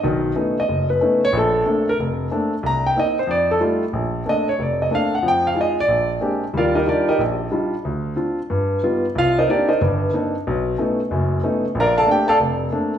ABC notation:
X:1
M:4/4
L:1/8
Q:"Swing" 1/4=184
K:Bb
V:1 name="Grand piano"
z3 ^d2 =B2 ^c | A3 B z4 | b g e c d A z2 | z2 e _d =d e f _g |
g f e d2 z3 | [FBdf] [EGBe] [GBd] [EGBe] z4 | z8 | [Ff] [EBce] [GBd] [EBce] z4 |
z8 | [Bdfb] [Adfa] [Gg] [Adfa] z4 |]
V:2 name="Grand piano"
[=B,,,^D,]2 [A,=B,^C^D] z ^F,,,2 [A,B,CD] z | B,,,2 [A,B,CD] z F,,,2 [A,B,CD] z | C,,2 [B,CE] z F,,2 [G,A,EF] z | B,,,2 [A,B,CD] z F,,,2 [A,B,CD] z |
[F,,F,]2 [_A,EF] z B,,,2 [A,B,CDG] z | [E,,G,]2 [G,DEF] z B,,,2 [G,DEF] z | D,,2 [CDF] z G,,2 [G,=B,^DF] z | C,,2 [B,CDE] z [G,,,G,,]2 [B,CDE] z |
=B,,,2 [A,=B,^C^D] z [^F,,,^F,,]2 [A,B,CD] z | B,,,2 [A,B,CD] z F,,,2 [A,B,CD] z |]